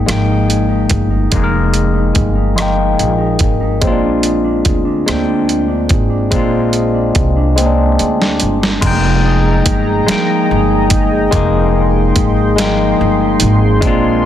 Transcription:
Already playing: tine electric piano G#3 A#3 D#4 G5, clean electric guitar D#4 G#4
0.06 upright bass G#1, clean electric guitar F3, tine electric piano G#3 A#3 D#4, cross-stick, closed hi-hat
0.11 tine electric piano G5
0.28 clean electric guitar D#4
0.48 clean electric guitar G#4, closed hi-hat
0.69 clean electric guitar D#4
0.90 upright bass G1, clean electric guitar G#4, kick, closed hi-hat
1.10 clean electric guitar D#4
1.31 upright bass F1, clean electric guitar F3, tine electric piano G#3 A#3, kick, closed hi-hat
1.35 tine electric piano D#4 G#4
1.44 tine electric piano A#4
1.52 clean electric guitar D#4
1.73 clean electric guitar G#4, closed hi-hat
1.94 clean electric guitar D#4
2.14 upright bass G1, clean electric guitar G#4, kick, closed hi-hat
2.35 clean electric guitar D#4
2.55 clean electric guitar F3, tine electric piano G#3 A#3, cross-stick, closed hi-hat
2.60 tine electric piano D#4 G5
2.76 clean electric guitar D#4
2.97 upright bass A#1, clean electric guitar G#4, closed hi-hat
3.18 clean electric guitar D#4
3.39 upright bass G#1, clean electric guitar G#4, kick, closed hi-hat
3.61 clean electric guitar D#4
3.81 upright bass A#1, tine electric piano G#3 C4, clean electric guitar A#3, kick, closed hi-hat
3.85 tine electric piano C#4 F4
3.92 tine electric piano D4
4.03 clean electric guitar D4
4.23 clean electric guitar G#4, closed hi-hat
4.44 clean electric guitar D4
4.65 upright bass D2, clean electric guitar G#4, kick, closed hi-hat
4.85 clean electric guitar D4
5.06 upright bass D2, tine electric piano G#3 C4 D4, clean electric guitar A#3, cross-stick, closed hi-hat
5.12 tine electric piano G5
5.27 clean electric guitar D4
5.47 clean electric guitar G#4, closed hi-hat
5.68 clean electric guitar D4
5.89 upright bass G#1, clean electric guitar G#4, kick, closed hi-hat
6.10 clean electric guitar D4
6.31 upright bass A#1, tine electric piano G#3 C4 D4, clean electric guitar A#3, kick, closed hi-hat
6.36 tine electric piano F4
6.52 clean electric guitar D4
6.73 clean electric guitar G#4, closed hi-hat
6.94 clean electric guitar D4
7.15 upright bass C2, clean electric guitar G#4, kick, closed hi-hat
7.36 clean electric guitar D4
7.56 tine electric piano G#3 C4 C#4, clean electric guitar A#3, closed hi-hat
7.62 tine electric piano G#4
7.66 tine electric piano D4
7.78 clean electric guitar D4
7.99 upright bass D2, clean electric guitar G#4, closed hi-hat
8.20 clean electric guitar D4, snare
8.40 upright bass G1, clean electric guitar G#4, closed hi-hat
8.61 clean electric guitar D4, snare
8.81 upright bass F1, clean electric guitar F3, tine electric piano G#3 A#3 D#4, analog synth pad G#4 D#5 G5 A#5, kick, closed hi-hat, crash
8.87 tine electric piano G5
9.04 clean electric guitar G#4
9.24 clean electric guitar D#4
9.45 clean electric guitar G#4
9.66 upright bass G1, clean electric guitar D#4, kick, closed hi-hat
9.87 clean electric guitar G#4
10.06 clean electric guitar F3, tine electric piano G#3 A#3 D#4, muted upright bass stroke, snare, closed hi-hat
10.12 tine electric piano G5
10.28 clean electric guitar G#4
10.49 upright bass G1, clean electric guitar D#4
10.70 clean electric guitar G#4
10.90 clean electric guitar D#4, kick, closed hi-hat
11.12 clean electric guitar G#4
11.31 upright bass F1, clean electric guitar F3, tine electric piano G#3 A#3 D#4, analog synth pad C6, kick, closed hi-hat
11.37 tine electric piano G#4
11.52 clean electric guitar G#4
11.74 clean electric guitar D#4
11.94 clean electric guitar G#4
12.15 clean electric guitar D#4, kick, closed hi-hat
12.36 clean electric guitar G#4
12.56 clean electric guitar F3, tine electric piano G#3 A#3 D#4, snare, closed hi-hat
12.62 tine electric piano G5
12.78 clean electric guitar G#4
12.99 upright bass G1, clean electric guitar D#4
13.21 clean electric guitar G#4
13.40 upright bass G#1, clean electric guitar D#4, closed hi-hat
13.62 clean electric guitar G#4
13.81 upright bass A#1, tine electric piano G#3 C4 D4, clean electric guitar A#3, analog synth pad A#4 D5 G#5, kick, closed hi-hat
13.87 tine electric piano F4
14.04 clean electric guitar G#4

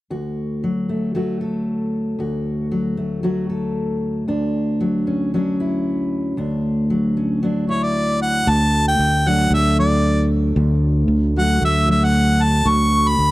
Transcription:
0.10 steel-string acoustic guitar D2 F#4
0.64 steel-string acoustic guitar F#3
0.89 steel-string acoustic guitar A3
1.15 steel-string acoustic guitar F#3 A3 F#4
1.41 steel-string acoustic guitar A4
2.19 steel-string acoustic guitar D2 F#4
2.72 steel-string acoustic guitar F#3
2.97 steel-string acoustic guitar A3
3.23 steel-string acoustic guitar F#3 A3 F#4
3.50 steel-string acoustic guitar A4
4.28 steel-string acoustic guitar D2 D4
4.81 steel-string acoustic guitar F#3
5.07 steel-string acoustic guitar C#4
5.34 steel-string acoustic guitar F#3 C#4 D4
5.60 steel-string acoustic guitar E4
6.37 steel-string acoustic guitar D2 D4
6.90 steel-string acoustic guitar F#3
7.17 steel-string acoustic guitar C#4
7.43 steel-string acoustic guitar F#3 D4
7.69 steel-string acoustic guitar E4, harmonica C#5
7.83 harmonica D5
8.22 harmonica F#5
8.46 steel-string acoustic guitar D2, fingered electric bass D2, harmonica A5
8.88 harmonica G5
8.99 fingered electric bass D2
9.26 steel-string acoustic guitar F#3 A3 D4, harmonica F#5
9.50 fingered electric bass D2, steel-string acoustic guitar A3, harmonica E5
9.78 steel-string acoustic guitar F#3, harmonica D5
10.56 fingered electric bass D2, steel-string acoustic guitar D2
11.08 fingered electric bass D2
11.36 steel-string acoustic guitar F#3 A3 F#4, harmonica F#5
11.62 fingered electric bass D2, steel-string acoustic guitar A3, harmonica E5
11.88 steel-string acoustic guitar F#3, harmonica E5
12.04 harmonica F#5
12.43 harmonica A5
12.65 fingered electric bass D2, steel-string acoustic guitar D2, harmonica C#6
13.08 harmonica B5
13.19 fingered electric bass D2

